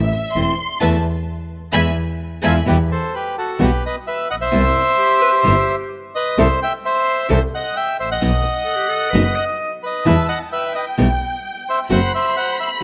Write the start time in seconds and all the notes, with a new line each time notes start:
Already playing: E5
0.32 E1 E3 A3 C6
0.36 C4 E4
0.80 E2 E3 A3 B3 B4 E5 A5
1.73 E2 E3 G#3 B3 E5 G#5 B5
2.42 E2 E3 G#3 B3 F4 A4 E5 G#5 B5
2.65 E2 B2 E3 G3 B3 F#4 G4 B4
2.92 A4 C5
3.14 G4 B4
3.38 F#4 A4
3.59 B1 B2 E3 G3 B3 F#4 B4
3.63 G4
3.86 B4 D#5
4.07 B4 E5
4.30 A#1 D#5 F#5
4.41 C5 E5
4.51 C2 C3 E3 G3 B3 E4
4.98 G4
5.21 B4
5.31 G4
5.43 G1 C3 E3 G3 B3 E4
6.15 B4 D#5
6.38 C2 C3 E3 G3 C4 E4 A4 C5 E5
6.63 E5 G5
6.85 C5 E5
7.29 C2 C3 E3 G3 C4 E4 A4 E5
7.33 C5
7.54 D#5 F#5
7.76 E5 G5
7.99 A1 C5 E5
8.11 D#5 F#5
8.21 B1 B2 F#3 B3 D#4 F#4
8.65 A4
8.76 G4
8.89 A4
9.10 F#1 B2 F#3 B3 D#4 B4
9.15 F#4
9.24 B4
9.36 D#5
9.83 B4 D#5
10.05 E2 B2 E3 G3 B3 E4 B4 E5 A5
10.28 D#5 F#5
10.52 B4 E5 G5
10.75 B4 D#5
10.98 B1 B2 E3 G3 B3 E4
11.69 C5 E5
11.89 F#1 F#3 A3 C4 F#4 C5 F#5 B5
12.15 C5 E5
12.37 C5 F#5
12.60 C5 E5